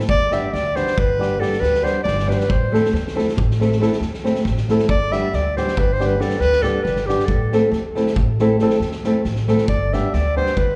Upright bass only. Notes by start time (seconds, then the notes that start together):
0.09 G1
0.54 D2
0.98 G1
1.61 D2
2.05 G1
2.49 A1
2.93 E2
3.37 A1
4.01 E2
4.45 A1
4.88 G1
5.34 D2
5.77 G1
6.40 D2
6.85 G1
7.29 A1
7.71 E2
8.16 A1
8.80 E2
9.25 A1
9.69 G1
10.14 D2
10.57 G1